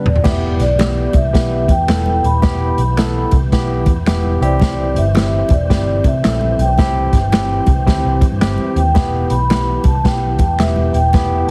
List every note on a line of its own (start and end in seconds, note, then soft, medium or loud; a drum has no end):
0.05 0.22 D#1 medium
0.05 0.26 D5 medium
0.05 mid tom medium
0.16 floor tom medium
0.24 0.55 E1 loud
0.24 4.36 E3 medium
0.24 0.63 B3 medium
0.24 4.37 B3 medium
0.24 0.63 E4 medium
0.24 0.63 G4 loud
0.24 4.36 G4 medium
0.24 0.41 E5 medium
0.24 kick loud
0.24 snare loud
0.24 crash loud
0.24 muted conga soft
0.59 1.06 B1 medium
0.59 1.16 D5 loud
0.59 snare soft
0.59 closed hi-hat medium
0.78 1.18 B3 medium
0.78 1.18 E4 medium
0.78 1.18 G4 medium
0.78 finger snap loud
0.78 snare loud
0.78 closed hi-hat medium
0.78 high conga medium
1.13 1.31 C2 medium
1.13 1.33 E5 medium
1.13 kick medium
1.13 closed hi-hat medium
1.13 muted conga medium
1.33 1.69 B1 medium
1.33 1.72 B3 medium
1.33 1.72 E4 medium
1.33 1.72 G4 medium
1.33 kick loud
1.33 snare loud
1.33 closed hi-hat medium
1.68 1.90 E2 loud
1.68 2.26 G5 loud
1.68 kick medium
1.68 closed hi-hat medium
1.68 muted conga medium
1.88 2.18 E1 loud
1.88 2.27 B3 medium
1.88 2.27 E4 medium
1.88 2.27 A4 medium
1.88 finger snap loud
1.88 snare loud
1.88 closed hi-hat medium
1.88 high conga medium
2.06 high conga medium
2.24 2.41 D#1 medium
2.24 3.29 B5 loud
2.24 closed hi-hat medium
2.42 2.81 B3 medium
2.42 2.81 E4 medium
2.42 2.81 G4 loud
2.42 kick loud
2.42 snare loud
2.42 closed hi-hat medium
2.42 muted conga medium
2.78 3.24 B1 medium
2.78 closed hi-hat medium
2.97 3.36 B3 medium
2.97 3.36 E4 medium
2.97 3.36 A4 loud
2.97 finger snap loud
2.97 snare loud
2.97 closed hi-hat medium
2.97 high conga medium
3.31 3.50 C2 medium
3.31 kick medium
3.31 closed hi-hat medium
3.31 muted conga medium
3.52 3.87 B1 medium
3.52 3.91 B3 medium
3.52 3.91 E4 medium
3.52 3.91 G4 loud
3.52 kick medium
3.52 snare loud
3.52 closed hi-hat medium
3.86 4.04 E2 loud
3.86 kick loud
3.86 closed hi-hat medium
3.86 muted conga medium
3.86 low conga medium
4.06 4.36 E1 medium
4.06 4.41 B3 medium
4.06 4.41 E4 medium
4.06 4.41 G4 loud
4.06 finger snap loud
4.06 snare loud
4.06 closed hi-hat loud
4.06 high conga medium
4.23 high conga medium
4.41 4.97 C2 loud
4.41 11.51 E3 medium
4.41 8.92 C4 medium
4.41 5.04 C4 medium
4.41 5.04 E4 medium
4.41 11.51 G4 medium
4.41 5.04 G4 medium
4.41 4.98 D5 medium
4.41 closed hi-hat medium
4.60 kick loud
4.60 snare loud
4.60 closed hi-hat medium
4.60 muted conga soft
4.96 5.42 G1 medium
4.96 5.52 E5 loud
4.96 closed hi-hat medium
5.15 5.54 C4 medium
5.15 5.54 E4 medium
5.15 5.54 G4 medium
5.15 finger snap loud
5.15 snare loud
5.15 closed hi-hat medium
5.15 high conga medium
5.49 5.67 E1 medium
5.49 6.07 D5 medium
5.49 kick medium
5.49 closed hi-hat medium
5.49 muted conga medium
5.70 5.99 G1 medium
5.70 6.08 C4 medium
5.70 6.08 E4 medium
5.70 6.08 G4 medium
5.70 kick medium
5.70 snare loud
5.70 closed hi-hat medium
6.04 6.21 C3 loud
6.04 6.61 E5 medium
6.04 kick medium
6.04 closed hi-hat medium
6.04 muted conga medium
6.24 6.54 A#1 medium
6.24 6.62 C4 medium
6.24 6.62 E4 medium
6.24 6.62 A4 medium
6.24 finger snap loud
6.24 snare loud
6.24 closed hi-hat medium
6.24 high conga medium
6.41 high conga medium
6.59 6.76 B1 medium
6.59 8.19 G5 loud
6.59 closed hi-hat medium
6.78 7.17 C4 loud
6.78 7.17 E4 medium
6.78 7.17 G4 loud
6.78 kick loud
6.78 snare loud
6.78 closed hi-hat medium
6.78 muted conga soft
7.13 7.59 G1 medium
7.13 kick medium
7.13 snare soft
7.13 closed hi-hat medium
7.32 7.71 C4 loud
7.32 7.71 E4 medium
7.32 7.71 G4 loud
7.32 finger snap medium
7.32 snare loud
7.32 closed hi-hat medium
7.32 high conga medium
7.66 7.84 C2 medium
7.66 kick medium
7.66 closed hi-hat medium
7.66 muted conga medium
7.86 8.02 D2 medium
7.86 8.25 C4 medium
7.86 8.25 E4 medium
7.86 8.25 G4 medium
7.86 kick loud
7.86 snare loud
7.86 closed hi-hat medium
7.86 muted conga soft
8.05 8.19 C2 medium
8.21 kick loud
8.21 closed hi-hat medium
8.21 muted conga medium
8.21 low conga medium
8.32 8.40 G2 medium
8.41 8.56 G1 medium
8.41 8.80 C4 medium
8.41 8.80 E4 medium
8.41 8.80 G4 loud
8.41 finger snap loud
8.41 snare loud
8.41 closed hi-hat medium
8.41 high conga medium
8.58 high conga medium
8.76 8.98 D#2 medium
8.76 9.32 G5 loud
8.76 closed hi-hat medium
8.94 9.26 E1 loud
8.94 9.34 B3 loud
8.94 11.11 B3 medium
8.94 9.34 E4 medium
8.94 9.34 G4 loud
8.94 kick loud
8.94 snare loud
8.94 closed hi-hat medium
8.94 muted conga soft
9.30 9.77 B1 medium
9.30 9.81 B5 loud
9.30 closed hi-hat medium
9.50 9.89 B3 medium
9.50 9.89 E4 medium
9.50 9.89 G4 medium
9.50 finger snap medium
9.50 snare loud
9.50 closed hi-hat medium
9.50 high conga medium
9.84 10.02 C2 medium
9.84 10.05 A5 medium
9.84 kick medium
9.84 closed hi-hat medium
9.84 muted conga medium
10.04 10.39 B1 medium
10.04 10.43 B3 medium
10.04 10.43 E4 medium
10.04 10.43 G4 medium
10.04 10.31 G5 loud
10.04 kick loud
10.04 snare loud
10.04 closed hi-hat medium
10.04 muted conga soft
10.33 10.40 A5 medium
10.39 10.61 E2 loud
10.39 10.58 G5 medium
10.39 kick medium
10.39 closed hi-hat medium
10.39 muted conga medium
10.59 10.89 E1 loud
10.59 10.98 B3 medium
10.59 10.98 E4 medium
10.59 10.98 G4 medium
10.59 10.95 E5 medium
10.59 finger snap medium
10.59 snare loud
10.59 closed hi-hat loud
10.59 high conga medium
10.76 high conga medium
10.93 11.11 D#1 medium
10.93 11.44 G5 loud
10.93 closed hi-hat medium
11.13 11.51 A3 medium
11.13 11.51 B3 loud
11.13 11.51 E4 medium
11.13 11.51 G4 loud
11.13 kick loud
11.13 snare loud
11.13 closed hi-hat medium
11.13 muted conga soft
11.48 11.51 A5 loud